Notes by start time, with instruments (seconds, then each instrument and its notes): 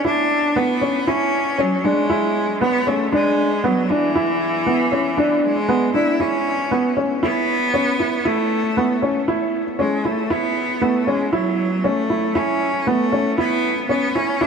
0.05 cello D4, upright piano E4
0.56 upright piano B3, cello B3
0.81 upright piano C#4
1.07 cello C#4, upright piano E4
1.58 cello F#3, upright piano C#4
1.84 cello G#3, upright piano D4
2.10 upright piano E4
2.61 upright piano B3, cello B3
2.87 cello A3, upright piano C#4
3.12 cello G#3, upright piano D4
3.64 cello F#3, upright piano B3
3.90 cello E3, upright piano D4
4.15 upright piano E4
4.66 upright piano B3
4.92 upright piano C#4
5.17 upright piano D4
5.43 cello G#3
5.69 upright piano B3
5.94 upright piano D4, cello E4
6.20 cello C#4, upright piano E4
6.71 upright piano B3
6.97 upright piano C#4
7.23 cello B3, upright piano E4
7.74 upright piano C#4
8.00 upright piano E4
8.25 cello A3, upright piano E4
8.77 upright piano B3
9.02 upright piano C#4
9.28 upright piano E4
9.79 cello G#3, upright piano C#4
10.05 cello A3, upright piano E4
10.30 cello B3, upright piano E4
10.81 cello A3, upright piano B3
11.07 cello G#3, upright piano C#4
11.33 cello F#3, upright piano E4
11.84 cello A3, upright piano C#4
12.10 upright piano E4
12.35 cello C#4, upright piano E4
12.87 cello A3, upright piano B3
13.12 upright piano C#4
13.38 cello B3, upright piano E4
13.89 cello B3, upright piano C#4
14.15 cello C#4, upright piano E4
14.41 cello D4, upright piano E4